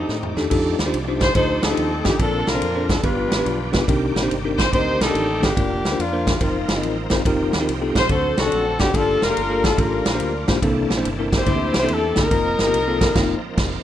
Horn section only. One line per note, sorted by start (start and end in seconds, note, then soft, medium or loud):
0.00 0.48 C4 medium
0.00 0.48 D#4 medium
1.22 1.34 C5 loud
1.35 1.64 D#4 medium
1.35 1.62 A4 medium
1.35 1.61 C5 loud
1.63 2.16 C4 medium
1.63 2.17 D#4 medium
1.63 2.05 A4 loud
2.04 2.19 G4 medium
2.18 3.01 C4 medium
2.18 2.48 D4 medium
2.18 2.47 A4 medium
2.46 3.01 D4 medium
2.46 3.00 F4 medium
2.46 2.89 A#4 loud
2.89 3.03 A4 medium
3.02 3.84 D4 medium
3.02 3.85 F4 medium
3.02 3.73 B4 medium
4.57 4.71 C5 medium
4.73 5.00 D#4 medium
4.73 5.42 G4 medium
4.73 4.99 C5 loud
5.01 5.43 D4 medium
5.01 5.53 D#4 medium
5.01 5.43 A4 loud
5.43 5.98 A#3 medium
5.43 5.98 D4 medium
5.43 5.99 G4 loud
5.99 6.38 A#3 medium
5.99 6.38 D4 medium
5.99 6.41 F4 loud
6.41 7.22 A#3 medium
6.41 7.21 C4 medium
6.41 6.81 F4 medium
7.97 8.10 C5 loud
8.10 8.37 F#4 medium
8.10 8.37 A4 medium
8.10 8.36 C5 loud
8.37 8.90 C4 medium
8.37 8.90 F#4 medium
8.37 8.80 A4 loud
8.80 8.94 G4 loud
8.94 9.22 D4 medium
8.94 9.21 F4 medium
8.94 9.22 A4 loud
9.22 9.78 D4 medium
9.22 9.78 F4 medium
9.22 9.64 A#4 loud
9.64 9.78 A4 loud
9.78 10.59 D4 medium
9.78 10.59 F4 medium
9.78 10.48 A#4 medium
11.34 12.14 E4 medium
11.34 12.13 G4 medium
11.34 11.74 C5 loud
11.77 11.89 C5 loud
11.92 12.18 A4 medium
12.19 13.55 D#4 medium
12.19 13.59 A#4 loud